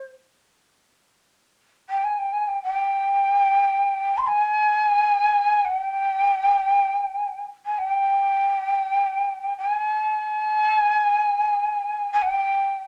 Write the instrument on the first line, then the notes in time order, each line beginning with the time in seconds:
shakuhachi
1.89 G5
2.03 G#5
2.18 G5
2.32 G#5
2.47 G5
2.63 G5
4.17 C6
4.26 G#5
5.64 F#5
5.79 G5
7.65 G#5
7.77 G5
9.57 G#5
12.12 G#5
12.21 G5